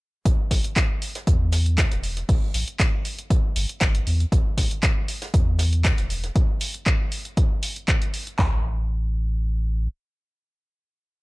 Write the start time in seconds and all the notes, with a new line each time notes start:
0.25 A1, kick, closed hi-hat
0.51 A1, kick, snare, closed hi-hat, open hi-hat
0.64 closed hi-hat
0.76 kick, snare, clap, closed hi-hat
1.02 closed hi-hat, open hi-hat
1.15 snare, closed hi-hat
1.27 E2, kick, closed hi-hat
1.52 snare, closed hi-hat, open hi-hat
1.66 closed hi-hat
1.77 kick, snare, clap, closed hi-hat
1.91 E1, snare, closed hi-hat
2.03 closed hi-hat, open hi-hat
2.17 snare, closed hi-hat
2.29 A1, kick, closed hi-hat, open hi-hat
2.54 A1, closed hi-hat, open hi-hat
2.68 closed hi-hat
2.79 kick, snare, clap, closed hi-hat
3.05 closed hi-hat, open hi-hat
3.19 closed hi-hat
3.30 kick, closed hi-hat
3.56 G1, closed hi-hat, open hi-hat
3.69 closed hi-hat
3.81 G1, kick, snare, clap, closed hi-hat
3.95 closed hi-hat
4.07 E2, closed hi-hat, open hi-hat
4.20 closed hi-hat
4.32 A1, kick, closed hi-hat
4.58 A1, kick, snare, closed hi-hat, open hi-hat
4.71 closed hi-hat
4.83 kick, snare, clap, closed hi-hat
5.08 closed hi-hat, open hi-hat
5.22 snare, closed hi-hat
5.34 E2, kick, closed hi-hat
5.59 snare, closed hi-hat, open hi-hat
5.73 closed hi-hat
5.84 kick, snare, clap, closed hi-hat
5.97 E1, snare, closed hi-hat
6.10 closed hi-hat, open hi-hat
6.24 snare, closed hi-hat
6.36 kick, closed hi-hat
6.61 open hi-hat
6.74 closed hi-hat
6.86 kick, clap, closed hi-hat
7.12 open hi-hat
7.25 closed hi-hat
7.37 kick, closed hi-hat
7.63 open hi-hat
7.76 closed hi-hat
7.88 kick, clap, closed hi-hat
8.02 closed hi-hat
8.14 open hi-hat
8.27 closed hi-hat
8.39 A1, kick, clap, floor tom